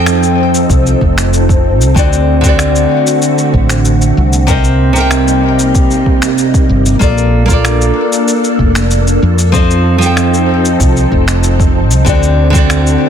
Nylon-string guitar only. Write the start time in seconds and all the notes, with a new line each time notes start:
Already playing: F3 C4 A4 G5
1.94 D3 C4 F#4 D5
2.41 D3 C4
2.46 F#4 D5
4.47 C3 C4 A#4 D#5
4.93 C3 C4
4.98 A#4 G5
6.99 A#3 F4 A4 D5
7.46 A#3 F4
7.51 A4 D5
9.52 F3 C4 A4 D#5
9.98 F3 C4
10.03 A4 G5
12.05 D3 C4 F#4 D5
12.50 D3 C4
12.55 F#4 D5